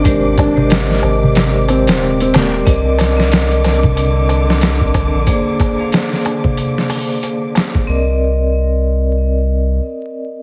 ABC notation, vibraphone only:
X:1
M:4/4
L:1/16
Q:"Swing 16ths" 1/4=92
K:Cm
V:1 name="Vibraphone"
[A,GBcd]3 [A,GBce]8- [A,GBce]3 [A,GBcd]2 | [CBde]3 [CBde]12- [CBde] | [B,Acd]3 [B,Acf]12- [B,Acf] | [CBde]16 |]